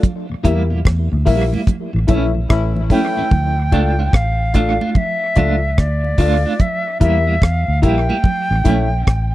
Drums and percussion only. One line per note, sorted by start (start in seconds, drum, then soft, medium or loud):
0.03 kick loud
0.03 hi-hat pedal medium
0.03 low conga medium
0.45 kick medium
0.45 closed hi-hat medium
0.85 kick loud
0.85 cross-stick loud
0.85 high conga soft
1.26 kick medium
1.26 open hi-hat medium
1.54 high conga medium
1.67 kick loud
1.67 hi-hat pedal medium
1.67 low conga medium
2.08 kick medium
2.08 closed hi-hat medium
2.08 high conga medium
2.08 low conga medium
2.50 kick loud
2.50 cross-stick loud
2.76 high conga soft
2.90 kick medium
2.90 open hi-hat medium
2.90 high conga medium
2.90 low conga medium
3.17 high conga soft
3.31 kick loud
3.31 low conga medium
3.72 kick medium
3.72 closed hi-hat medium
4.13 kick loud
4.13 cross-stick loud
4.54 kick medium
4.54 closed hi-hat medium
4.81 high conga medium
4.95 kick loud
4.95 low conga medium
5.36 kick medium
5.36 closed hi-hat medium
5.36 low conga medium
5.78 kick medium
5.78 cross-stick loud
6.04 high conga soft
6.18 kick medium
6.18 open hi-hat medium
6.59 kick loud
6.59 hi-hat pedal medium
6.59 low conga medium
7.01 kick medium
7.01 closed hi-hat medium
7.42 kick loud
7.42 cross-stick loud
7.83 kick loud
7.83 closed hi-hat medium
8.10 high conga medium
8.24 kick loud
8.24 low conga medium
8.65 kick medium
8.65 closed hi-hat medium
8.65 low conga medium
9.07 kick medium
9.07 cross-stick loud